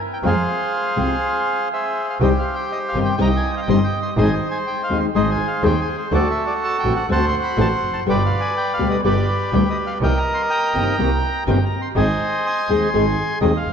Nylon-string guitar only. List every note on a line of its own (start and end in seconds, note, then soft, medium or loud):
0.23 0.32 C3 medium
0.23 0.33 F3 medium
0.23 0.33 G#3 medium
0.23 0.33 C4 medium
0.23 0.33 F4 loud
0.96 1.14 C3 medium
0.96 1.14 F3 medium
0.96 1.14 G#3 medium
0.96 1.14 C4 medium
0.96 1.14 F4 medium
2.20 2.30 C3 medium
2.20 2.30 D#3 medium
2.20 2.30 G3 medium
2.20 2.30 C4 medium
2.20 2.30 G4 medium
2.94 3.11 C3 medium
2.94 3.11 D#3 medium
2.94 3.12 G3 medium
2.94 3.12 C4 medium
2.94 3.12 G4 medium
3.18 3.27 C3 medium
3.18 3.28 D#3 medium
3.18 3.28 G3 medium
3.18 3.28 C4 medium
3.18 3.28 G4 medium
3.67 3.77 C3 medium
3.67 3.77 D#3 medium
3.67 3.77 G3 medium
3.67 3.77 C4 medium
3.67 3.77 G4 medium
4.16 4.26 D#3 medium
4.16 4.26 G#3 medium
4.16 4.26 C4 medium
4.16 4.26 D#4 loud
4.16 4.26 G#4 loud
4.89 5.07 D#3 medium
4.89 5.07 G#3 medium
4.89 5.07 C4 medium
4.89 5.07 D#4 medium
4.89 5.07 G#4 medium
5.15 5.23 D#3 medium
5.15 5.23 G#3 medium
5.15 5.24 C4 medium
5.15 5.24 D#4 loud
5.15 5.24 G#4 medium
5.62 5.72 D#3 medium
5.62 5.72 G#3 medium
5.62 5.72 C4 medium
5.62 5.72 D#4 medium
5.62 5.72 G#4 loud
6.11 6.20 D3 medium
6.11 6.20 A3 loud
6.11 6.20 C4 loud
6.11 6.21 F#4 loud
6.83 7.01 D3 medium
6.83 7.01 A3 medium
6.83 7.01 C4 medium
6.83 7.01 F#4 medium
7.09 7.18 D3 medium
7.09 7.18 A3 medium
7.09 7.18 C4 loud
7.09 7.18 F#4 loud
7.57 7.66 D3 medium
7.57 7.66 A3 loud
7.57 7.66 C4 medium
7.57 7.66 F#4 medium
8.06 8.15 B2 medium
8.06 8.15 D3 loud
8.06 8.15 G3 medium
8.06 8.15 B3 loud
8.06 8.15 G4 loud
8.78 8.96 B2 medium
8.78 8.96 D3 medium
8.78 8.96 G3 medium
8.78 8.96 B3 medium
8.78 8.96 G4 medium
9.04 9.13 B2 medium
9.04 9.13 D3 medium
9.04 9.13 G3 loud
9.04 9.13 B3 medium
9.04 9.13 G4 loud
9.52 9.61 B2 medium
9.52 9.61 D3 medium
9.52 9.61 G3 medium
9.52 9.62 B3 loud
9.52 9.62 G4 loud
10.01 10.10 C3 medium
10.01 10.10 D#3 medium
10.01 10.11 A#3 medium
10.01 10.11 C4 medium
10.01 10.11 G4 loud
10.74 10.91 C3 medium
10.74 10.91 D#3 medium
10.74 10.91 A#3 medium
10.74 10.91 C4 medium
10.74 10.92 G4 medium
10.98 11.07 C3 medium
10.98 11.08 D#3 medium
10.98 11.08 A#3 loud
10.98 11.08 C4 medium
10.98 11.08 G4 medium
11.46 11.56 C3 medium
11.46 11.56 D#3 medium
11.46 11.56 A#3 medium
11.46 11.56 C4 medium
11.46 11.57 G4 loud
11.95 12.05 D#3 medium
11.95 12.05 G#3 medium
11.95 12.05 C4 medium
11.95 12.05 D#4 loud
11.95 12.05 G#4 medium
12.69 12.86 D#3 medium
12.69 12.86 G#3 medium
12.69 12.86 C4 medium
12.69 12.86 D#4 medium
12.69 12.86 G#4 medium
12.93 13.02 D#3 medium
12.93 13.02 G#3 medium
12.93 13.02 C4 medium
12.93 13.02 D#4 loud
12.93 13.03 G#4 loud
13.41 13.50 D#3 medium
13.41 13.50 G#3 medium
13.41 13.50 C4 medium
13.41 13.50 D#4 medium
13.41 13.51 G#4 medium